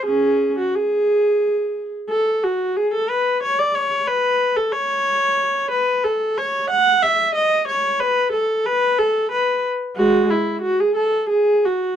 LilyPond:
\new Staff \with { instrumentName = "Viola" } { \time 3/4 \key gis \phrygian \tempo 4 = 91 <cis' gis'>8. fis'16 gis'4.~ gis'16 r16 | a'8 fis'8 gis'16 a'16 b'8 cis''16 d''16 cis''8 | b'8. a'16 cis''4. b'8 | \key fis \dorian a'8 cis''8 fis''8 e''8 dis''8 cis''8 |
b'8 a'8 b'8 a'8 b'8 r8 | <gis fis'>8 e'8 fis'16 gis'16 a'8 gis'8 fis'8 | }